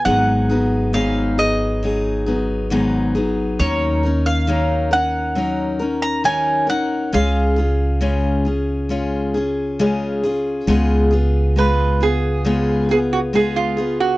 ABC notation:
X:1
M:4/4
L:1/16
Q:1/4=68
K:Dbmix
V:1 name="Mandolin"
g4 f2 e4 z6 | d3 f3 g4- g b a2 g2 | f12 z4 | z16 |]
V:2 name="Resonator guitar played with a steel bar"
z16 | z16 | z16 | z4 c2 A4 A G A F2 G |]
V:3 name="Steel-string acoustic guitar"
[A,,E,G,CEA]2 [G,CEA]2 [A,,E,G,CEA]2 [G,CEA]2 [G,CEA]2 [G,CEA]2 [A,,E,G,CEA]2 [G,CEA]2 | [E,G,DEB]2 [DEB]2 [E,G,DEB]2 [DEB]2 [G,DEB]2 [DEB]2 [E,G,DEB]2 [DEB]2 | [D,A,DFA]2 [DFA]2 [D,A,DFA]2 [DFA]2 [A,DFA]2 [DFA]2 [D,A,DFA]2 [DFA]2 | [D,A,CFA]2 [CFA]2 [A,CFA]2 [CFA]2 [D,A,CFA]2 [CFA]2 [A,CFA]2 [CFA]2 |]
V:4 name="Upright bass" clef=bass
A,,,16 | E,,16 | D,,16 | D,,16 |]